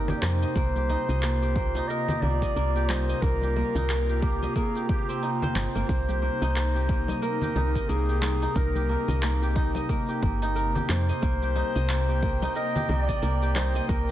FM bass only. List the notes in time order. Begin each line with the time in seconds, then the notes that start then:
Already playing: G1
0.22 F2
0.56 C2
1.09 C2
2.22 C2
2.56 C2
3.22 C2
3.75 C2
5.55 G1
5.75 G1
5.89 C2
6.42 C2
7.56 C2
7.89 C2
8.56 C2
9.08 C2
10.23 G1
10.89 F2
11.23 C2
11.76 C2
12.89 C2
13.22 C2
13.89 C2